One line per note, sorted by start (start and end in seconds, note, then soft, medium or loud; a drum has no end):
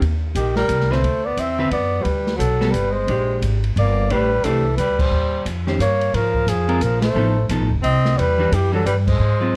0.01 0.34 D#2 medium
0.01 kick soft
0.01 ride medium
0.35 0.68 A#1 medium
0.35 0.55 D#3 medium
0.35 0.55 G4 medium
0.35 kick soft
0.35 hi-hat pedal medium
0.35 ride medium
0.56 0.93 G3 medium
0.56 0.93 A#4 medium
0.56 snare medium
0.68 1.02 C2 medium
0.68 kick soft
0.68 hi-hat pedal soft
0.68 ride medium
0.81 snare soft
0.91 1.02 D3 medium
0.91 1.28 A3 medium
0.91 1.02 C4 medium
0.91 1.02 F#4 medium
0.91 1.02 B4 medium
0.91 1.26 C5 medium
0.91 snare soft
1.03 1.36 D2 medium
1.03 kick soft
1.03 ride medium
1.25 1.40 B3 medium
1.25 1.41 D5 medium
1.37 1.70 E2 medium
1.37 1.71 C4 medium
1.37 1.72 E5 medium
1.37 kick soft
1.37 hi-hat pedal soft
1.37 ride medium
1.58 1.70 D3 medium
1.58 1.70 C4 medium
1.58 1.70 F#4 medium
1.58 1.70 B4 medium
1.71 2.04 F#2 medium
1.71 2.02 B3 medium
1.71 2.03 D5 medium
1.71 kick soft
1.71 ride medium
2.00 2.04 F#3 soft
2.00 2.36 G3 medium
2.00 2.38 B4 medium
2.05 2.38 D2 medium
2.05 kick soft
2.05 ride medium
2.27 snare soft
2.36 2.72 B1 medium
2.36 2.72 F#3 medium
2.36 2.73 A4 medium
2.36 kick soft
2.36 hi-hat pedal medium
2.36 ride medium
2.61 2.72 G3 medium
2.61 2.72 B3 medium
2.61 2.72 F#4 medium
2.61 2.73 A4 medium
2.61 snare soft
2.71 3.06 G1 medium
2.71 2.92 G3 medium
2.71 2.94 B4 medium
2.71 kick soft
2.71 hi-hat pedal medium
2.71 ride medium
2.91 3.39 G#3 medium
2.91 3.40 C5 medium
3.07 3.40 A#1 medium
3.07 3.59 G#3 soft
3.07 3.59 D4 medium
3.07 3.60 G4 medium
3.07 kick soft
3.07 ride medium
3.42 3.74 G#1 medium
3.42 kick soft
3.42 hi-hat pedal soft
3.42 ride medium
3.64 ride soft
3.76 4.09 G1 medium
3.76 4.12 A#3 medium
3.76 4.13 D5 loud
3.76 kick soft
3.76 ride medium
4.10 4.43 A1 medium
4.10 4.47 G3 medium
4.10 4.29 A3 medium
4.10 4.29 D4 medium
4.10 4.29 G4 medium
4.10 4.45 B4 loud
4.10 4.30 C5 medium
4.10 kick soft
4.10 ride medium
4.44 4.77 C2 medium
4.44 4.78 E3 medium
4.44 4.63 A3 medium
4.44 4.63 D4 medium
4.44 4.64 G4 medium
4.44 4.77 A4 medium
4.44 4.64 C5 medium
4.44 kick soft
4.44 hi-hat pedal medium
4.44 ride medium
4.77 5.10 D2 medium
4.77 5.01 G3 medium
4.77 5.02 B4 medium
4.77 kick soft
4.77 hi-hat pedal medium
4.77 ride medium
4.99 5.47 G3 medium
4.99 5.46 C5 medium
4.99 kick medium
4.99 crash medium
5.11 5.44 D#2 medium
5.45 5.79 F2 medium
5.45 kick soft
5.45 hi-hat pedal medium
5.45 ride medium
5.67 5.78 D#3 medium
5.67 5.78 C#4 medium
5.67 5.79 G4 medium
5.67 5.79 C5 medium
5.67 snare soft
5.79 6.12 G2 medium
5.79 6.16 A#3 medium
5.79 6.16 C#5 loud
5.79 kick soft
5.79 hi-hat pedal soft
5.79 ride medium
6.01 ride soft
6.13 6.46 G#2 medium
6.13 6.48 F3 medium
6.13 6.50 A#4 loud
6.13 kick soft
6.13 ride medium
6.34 kick medium
6.47 6.80 F2 medium
6.47 6.83 F3 medium
6.47 6.84 G#4 medium
6.47 hi-hat pedal medium
6.47 ride medium
6.68 6.80 G#3 medium
6.68 6.80 C4 medium
6.68 6.81 F4 medium
6.68 6.81 A#4 medium
6.68 ride soft
6.81 7.14 A#1 medium
6.81 7.03 F3 medium
6.81 7.02 A#4 medium
6.81 kick soft
6.81 hi-hat pedal soft
6.81 ride medium
7.02 7.47 A3 medium
7.02 7.46 C5 medium
7.02 snare medium
7.02 ride medium
7.15 7.48 A1 medium
7.15 7.35 F3 medium
7.15 7.35 B3 medium
7.15 7.35 D#4 medium
7.15 7.35 A4 medium
7.49 7.60 B1 medium
7.49 7.69 F3 soft
7.49 7.69 B3 medium
7.49 7.69 D#4 medium
7.49 7.70 A4 medium
7.49 kick soft
7.49 hi-hat pedal soft
7.49 ride medium
7.60 7.70 A1 medium
7.71 7.82 F1 medium
7.71 kick medium
7.82 8.17 C2 medium
7.82 8.18 C4 medium
7.82 8.20 D#5 loud
7.82 kick soft
7.82 ride medium
8.05 snare soft
8.17 8.51 E2 medium
8.17 8.54 G3 medium
8.17 8.55 B4 loud
8.17 kick soft
8.17 ride medium
8.38 8.50 E3 medium
8.38 8.51 G3 medium
8.38 8.51 D4 medium
8.38 8.51 F#4 medium
8.52 8.85 F#2 medium
8.52 8.74 E3 medium
8.52 8.74 G4 medium
8.52 kick soft
8.52 hi-hat pedal medium
8.52 ride medium
8.72 8.85 E3 medium
8.72 8.85 F#3 medium
8.72 8.84 G3 medium
8.72 8.85 D4 medium
8.72 8.85 F#4 medium
8.72 8.86 A4 medium
8.86 9.19 G2 medium
8.86 8.96 G3 medium
8.86 8.96 B4 medium
8.86 kick soft
8.86 hi-hat pedal soft
8.86 ride medium
9.07 9.56 G#3 medium
9.07 9.56 C5 medium
9.07 kick medium
9.07 crash medium
9.19 9.53 G#2 medium
9.40 9.56 F#3 medium
9.40 9.56 C4 medium
9.40 9.56 F4 medium